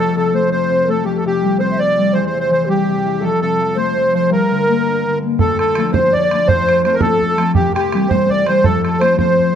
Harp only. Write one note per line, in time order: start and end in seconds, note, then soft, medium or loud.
0.00 1.04 F2 medium
0.00 0.32 A3 medium
0.00 0.49 C4 medium
0.16 0.69 C3 medium
0.33 0.87 A3 medium
0.49 1.60 C4 medium
0.70 1.09 C3 medium
0.88 3.76 A3 medium
1.05 2.18 F2 medium
1.25 1.79 C3 medium
1.42 1.96 G3 medium
1.60 4.60 C4 medium
1.80 2.18 C3 soft
1.97 2.18 G3 soft
2.14 3.27 E2 medium
2.34 2.87 C3 medium
2.50 2.90 E3 medium
2.67 3.27 G3 medium
2.88 3.27 C3 medium
3.05 3.27 E3 soft
3.21 4.35 F2 medium
3.43 3.95 C3 medium
3.60 3.99 F3 medium
3.76 4.73 A3 medium
3.97 4.35 C3 soft
4.14 4.35 F3 medium
4.30 5.44 G2 medium
4.51 5.06 D3 medium
4.67 5.22 A#3 medium
4.86 5.78 D4 medium
5.07 5.44 D3 soft
5.23 5.84 A#3 soft
5.41 6.52 D2 medium
5.77 5.93 F3 soft
5.77 5.94 A3 soft
5.77 5.95 D4 medium
5.94 6.30 F3 soft
5.94 6.32 A3 soft
5.94 6.32 D4 medium
6.31 6.52 F3 soft
6.31 6.85 A3 soft
6.31 9.12 D4 soft
6.47 7.60 F2 medium
6.85 7.01 F3 medium
6.85 7.02 A3 soft
6.85 7.02 C4 medium
7.02 7.36 F3 soft
7.02 7.38 A3 soft
7.02 7.39 C4 medium
7.37 7.60 F3 soft
7.37 9.01 A3 soft
7.37 7.94 C4 soft
7.56 8.69 C2 medium
7.93 8.09 E3 medium
7.93 8.09 G3 soft
7.93 8.10 C4 medium
8.10 8.46 E3 medium
8.10 8.47 G3 medium
8.10 8.48 C4 medium
8.47 8.69 E3 soft
8.47 8.69 G3 soft
8.47 9.01 C4 soft
8.65 9.55 F2 medium
9.01 9.16 F3 soft
9.01 9.17 A3 soft
9.01 9.18 C4 medium
9.17 9.53 F3 medium
9.17 9.54 A3 soft
9.17 9.54 C4 medium